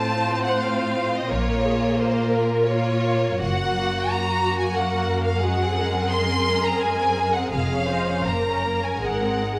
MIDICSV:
0, 0, Header, 1, 6, 480
1, 0, Start_track
1, 0, Tempo, 684932
1, 920, Time_signature, 3, 2, 24, 8
1, 1869, Tempo, 751880
1, 2349, Tempo, 676437
1, 4749, Tempo, 720288
1, 5709, Tempo, 785340
1, 6535, End_track
2, 0, Start_track
2, 0, Title_t, "Violin section"
2, 0, Program_c, 0, 48
2, 0, Note_on_c, 0, 81, 64
2, 305, Note_off_c, 0, 81, 0
2, 309, Note_on_c, 0, 78, 58
2, 432, Note_off_c, 0, 78, 0
2, 435, Note_on_c, 0, 77, 51
2, 800, Note_off_c, 0, 77, 0
2, 804, Note_on_c, 0, 75, 57
2, 918, Note_on_c, 0, 73, 58
2, 922, Note_off_c, 0, 75, 0
2, 1390, Note_off_c, 0, 73, 0
2, 1393, Note_on_c, 0, 72, 60
2, 1619, Note_on_c, 0, 70, 53
2, 1628, Note_off_c, 0, 72, 0
2, 1865, Note_off_c, 0, 70, 0
2, 1867, Note_on_c, 0, 73, 63
2, 2347, Note_on_c, 0, 78, 67
2, 2348, Note_off_c, 0, 73, 0
2, 2816, Note_off_c, 0, 78, 0
2, 2836, Note_on_c, 0, 82, 64
2, 3176, Note_on_c, 0, 80, 53
2, 3182, Note_off_c, 0, 82, 0
2, 3291, Note_off_c, 0, 80, 0
2, 3296, Note_on_c, 0, 78, 55
2, 3646, Note_on_c, 0, 77, 51
2, 3651, Note_off_c, 0, 78, 0
2, 3762, Note_on_c, 0, 78, 60
2, 3767, Note_off_c, 0, 77, 0
2, 4250, Note_off_c, 0, 78, 0
2, 4252, Note_on_c, 0, 84, 67
2, 4624, Note_off_c, 0, 84, 0
2, 4647, Note_on_c, 0, 82, 56
2, 4759, Note_off_c, 0, 82, 0
2, 4761, Note_on_c, 0, 80, 59
2, 5105, Note_off_c, 0, 80, 0
2, 5110, Note_on_c, 0, 78, 50
2, 5224, Note_off_c, 0, 78, 0
2, 5226, Note_on_c, 0, 77, 55
2, 5702, Note_off_c, 0, 77, 0
2, 5718, Note_on_c, 0, 82, 49
2, 6061, Note_off_c, 0, 82, 0
2, 6073, Note_on_c, 0, 80, 44
2, 6184, Note_off_c, 0, 80, 0
2, 6191, Note_on_c, 0, 78, 47
2, 6535, Note_off_c, 0, 78, 0
2, 6535, End_track
3, 0, Start_track
3, 0, Title_t, "Viola section"
3, 0, Program_c, 1, 48
3, 0, Note_on_c, 1, 72, 48
3, 915, Note_on_c, 1, 70, 46
3, 919, Note_off_c, 1, 72, 0
3, 1149, Note_off_c, 1, 70, 0
3, 1155, Note_on_c, 1, 68, 39
3, 1382, Note_on_c, 1, 70, 47
3, 1390, Note_off_c, 1, 68, 0
3, 1863, Note_on_c, 1, 65, 44
3, 1864, Note_off_c, 1, 70, 0
3, 2341, Note_on_c, 1, 66, 44
3, 2346, Note_off_c, 1, 65, 0
3, 3270, Note_off_c, 1, 66, 0
3, 3290, Note_on_c, 1, 70, 50
3, 3760, Note_off_c, 1, 70, 0
3, 3773, Note_on_c, 1, 66, 43
3, 4010, Note_on_c, 1, 70, 45
3, 4013, Note_off_c, 1, 66, 0
3, 5217, Note_off_c, 1, 70, 0
3, 5223, Note_on_c, 1, 68, 33
3, 5464, Note_off_c, 1, 68, 0
3, 5465, Note_on_c, 1, 72, 37
3, 5710, Note_off_c, 1, 72, 0
3, 5713, Note_on_c, 1, 70, 34
3, 6178, Note_off_c, 1, 70, 0
3, 6179, Note_on_c, 1, 68, 33
3, 6535, Note_off_c, 1, 68, 0
3, 6535, End_track
4, 0, Start_track
4, 0, Title_t, "Violin section"
4, 0, Program_c, 2, 48
4, 0, Note_on_c, 2, 60, 43
4, 0, Note_on_c, 2, 65, 45
4, 423, Note_off_c, 2, 60, 0
4, 425, Note_off_c, 2, 65, 0
4, 431, Note_on_c, 2, 60, 43
4, 434, Note_on_c, 2, 65, 40
4, 908, Note_off_c, 2, 60, 0
4, 909, Note_off_c, 2, 65, 0
4, 922, Note_on_c, 2, 58, 42
4, 928, Note_on_c, 2, 65, 44
4, 1854, Note_off_c, 2, 65, 0
4, 1868, Note_off_c, 2, 58, 0
4, 1872, Note_on_c, 2, 65, 45
4, 1876, Note_on_c, 2, 58, 42
4, 2341, Note_off_c, 2, 65, 0
4, 2343, Note_off_c, 2, 58, 0
4, 2356, Note_on_c, 2, 58, 41
4, 2356, Note_on_c, 2, 66, 45
4, 2469, Note_off_c, 2, 58, 0
4, 2478, Note_on_c, 2, 58, 39
4, 2573, Note_off_c, 2, 58, 0
4, 2581, Note_on_c, 2, 58, 45
4, 2701, Note_off_c, 2, 58, 0
4, 2709, Note_on_c, 2, 58, 40
4, 2825, Note_off_c, 2, 58, 0
4, 2833, Note_on_c, 2, 58, 41
4, 2941, Note_off_c, 2, 58, 0
4, 2950, Note_on_c, 2, 58, 41
4, 3052, Note_off_c, 2, 58, 0
4, 3061, Note_on_c, 2, 58, 38
4, 3166, Note_off_c, 2, 58, 0
4, 3174, Note_on_c, 2, 58, 37
4, 3284, Note_off_c, 2, 58, 0
4, 3293, Note_on_c, 2, 58, 39
4, 3408, Note_off_c, 2, 58, 0
4, 3417, Note_on_c, 2, 58, 38
4, 3533, Note_off_c, 2, 58, 0
4, 3541, Note_on_c, 2, 58, 39
4, 3656, Note_off_c, 2, 58, 0
4, 3671, Note_on_c, 2, 58, 40
4, 3747, Note_off_c, 2, 66, 0
4, 3781, Note_on_c, 2, 68, 44
4, 3782, Note_off_c, 2, 58, 0
4, 3783, Note_on_c, 2, 56, 38
4, 3890, Note_off_c, 2, 56, 0
4, 3899, Note_on_c, 2, 60, 37
4, 4016, Note_off_c, 2, 60, 0
4, 4034, Note_on_c, 2, 56, 40
4, 4143, Note_on_c, 2, 60, 34
4, 4144, Note_off_c, 2, 56, 0
4, 4260, Note_off_c, 2, 60, 0
4, 4271, Note_on_c, 2, 56, 35
4, 4386, Note_off_c, 2, 56, 0
4, 4388, Note_on_c, 2, 60, 38
4, 4506, Note_off_c, 2, 60, 0
4, 4522, Note_on_c, 2, 56, 39
4, 4636, Note_off_c, 2, 56, 0
4, 4647, Note_on_c, 2, 60, 34
4, 4759, Note_off_c, 2, 60, 0
4, 4767, Note_on_c, 2, 56, 35
4, 4874, Note_off_c, 2, 56, 0
4, 4879, Note_on_c, 2, 60, 36
4, 4988, Note_off_c, 2, 60, 0
4, 5001, Note_on_c, 2, 56, 41
4, 5109, Note_off_c, 2, 56, 0
4, 5119, Note_on_c, 2, 60, 36
4, 5228, Note_off_c, 2, 60, 0
4, 5245, Note_on_c, 2, 56, 37
4, 5345, Note_off_c, 2, 56, 0
4, 5366, Note_on_c, 2, 61, 33
4, 5475, Note_off_c, 2, 61, 0
4, 5490, Note_on_c, 2, 56, 36
4, 5599, Note_off_c, 2, 56, 0
4, 5602, Note_on_c, 2, 61, 33
4, 5686, Note_off_c, 2, 68, 0
4, 5716, Note_off_c, 2, 61, 0
4, 5721, Note_on_c, 2, 58, 33
4, 5724, Note_on_c, 2, 70, 38
4, 5821, Note_off_c, 2, 58, 0
4, 5845, Note_on_c, 2, 61, 32
4, 5948, Note_on_c, 2, 58, 34
4, 5949, Note_off_c, 2, 61, 0
4, 6060, Note_on_c, 2, 61, 31
4, 6061, Note_off_c, 2, 58, 0
4, 6178, Note_off_c, 2, 61, 0
4, 6178, Note_on_c, 2, 56, 33
4, 6291, Note_off_c, 2, 56, 0
4, 6309, Note_on_c, 2, 60, 30
4, 6425, Note_on_c, 2, 56, 31
4, 6427, Note_off_c, 2, 60, 0
4, 6535, Note_off_c, 2, 56, 0
4, 6535, Note_off_c, 2, 70, 0
4, 6535, End_track
5, 0, Start_track
5, 0, Title_t, "Cello section"
5, 0, Program_c, 3, 48
5, 0, Note_on_c, 3, 45, 47
5, 888, Note_off_c, 3, 45, 0
5, 913, Note_on_c, 3, 46, 51
5, 2320, Note_off_c, 3, 46, 0
5, 2339, Note_on_c, 3, 42, 47
5, 5186, Note_off_c, 3, 42, 0
5, 5214, Note_on_c, 3, 41, 45
5, 5696, Note_off_c, 3, 41, 0
5, 5705, Note_on_c, 3, 42, 40
5, 6173, Note_on_c, 3, 44, 35
5, 6174, Note_off_c, 3, 42, 0
5, 6535, Note_off_c, 3, 44, 0
5, 6535, End_track
6, 0, Start_track
6, 0, Title_t, "Double bass section"
6, 0, Program_c, 4, 48
6, 922, Note_on_c, 4, 34, 45
6, 1364, Note_off_c, 4, 34, 0
6, 2353, Note_on_c, 4, 30, 44
6, 2800, Note_off_c, 4, 30, 0
6, 5222, Note_on_c, 4, 29, 40
6, 5683, Note_off_c, 4, 29, 0
6, 5714, Note_on_c, 4, 30, 35
6, 6154, Note_off_c, 4, 30, 0
6, 6179, Note_on_c, 4, 32, 29
6, 6535, Note_off_c, 4, 32, 0
6, 6535, End_track
0, 0, End_of_file